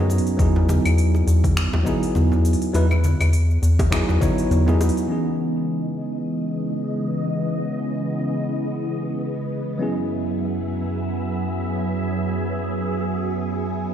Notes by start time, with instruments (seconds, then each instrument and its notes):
Already playing: analog synth bass F#2, tine electric piano F#3 B3 C#4 D#4
0.00 tine electric piano G#4
0.10 open hi-hat, high bongo, cabasa
0.18 open hi-hat
0.27 open hi-hat, cabasa
0.37 analog synth bass E2, tine electric piano F#3 B3 D#4 E4, kick, open hi-hat, cabasa
0.41 tine electric piano G#4
0.56 low conga
0.69 high bongo, high conga, cabasa
0.85 analog synth bass E2, open hi-hat, cabasa, claves
0.98 open hi-hat, cabasa
1.14 high bongo, cabasa
1.27 analog synth bass E2, open hi-hat, cabasa
1.44 kick, open hi-hat, high conga, cabasa
1.57 finger snap, open hi-hat, cabasa
1.73 analog synth bass E2, high bongo, low conga
1.84 tine electric piano F#3 B3 D#4 E4, kick, high conga, cabasa
1.88 tine electric piano G#4
2.03 open hi-hat, cabasa
2.15 analog synth bass E2, high bongo, high conga, cabasa
2.32 low conga, cabasa
2.45 open hi-hat, cabasa
2.53 open hi-hat
2.62 open hi-hat, cabasa
2.73 analog synth bass E2, tine electric piano F#3 B3 D#4 E4 B4, open hi-hat, high bongo, cabasa
2.91 low conga, cabasa, claves
3.04 open hi-hat, high conga, cabasa
3.20 analog synth bass E2, open hi-hat, high bongo, cabasa, claves
3.33 open hi-hat, cabasa
3.51 cabasa
3.62 analog synth bass E2, open hi-hat, cabasa
3.79 kick, open hi-hat, high bongo, high conga, cabasa
3.91 tine electric piano F#3 B3 D#4 E4 G#4, finger snap, kick, open hi-hat, cabasa
4.08 analog synth bass E2, low conga, cabasa
4.20 tine electric piano F#3 B3 D#4 E4 C#5, kick, open hi-hat, high bongo, high conga, cabasa
4.38 open hi-hat, cabasa
4.50 analog synth bass E2, open hi-hat, high conga, cabasa
4.66 tine electric piano F#3 B3 D#4 E4 G#4, low conga, cabasa
4.81 open hi-hat, high bongo, cabasa
4.89 open hi-hat
4.97 open hi-hat, cabasa
5.07 string machine C#3 E3 G#3 B3 D#5, tine electric piano E3 B3 C#4 D#4
5.12 tine electric piano G#4
9.78 string machine F#2 F#3 G#4 E5, tine electric piano F#3 B3 C#4 E4
9.83 tine electric piano G#4